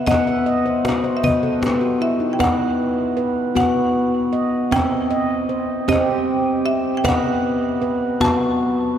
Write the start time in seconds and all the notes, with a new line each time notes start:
0.07 B3 D#5 F#5, cajon bass, cajon slap
0.27 E5, cajon slap
0.46 D#5
0.66 C5
0.85 F#4 B4, cajon slap
1.04 C5
1.17 E5
1.23 B3 B4 D#5, cajon bass
1.43 A4
1.62 B3 G4, cajon slap
1.81 F#4, cajon slap
2.01 E4 E5
2.20 D#4
2.33 G5
2.39 B3 B4 D#5 F#5, cajon bass, cajon slap
3.17 B4
3.55 B3 F#4 F#5, cajon bass, cajon slap
4.33 D#5
4.71 C4 E5 G5, cajon bass, cajon slap
5.11 D#5
5.49 C5
5.88 C4 G4 D#5, cajon bass, cajon slap
6.65 G4 E5
6.97 G5
7.04 B3 B4 D#5 F#5, cajon bass, cajon slap
7.82 B4
8.20 B3 F#4 A5, cajon bass, cajon slap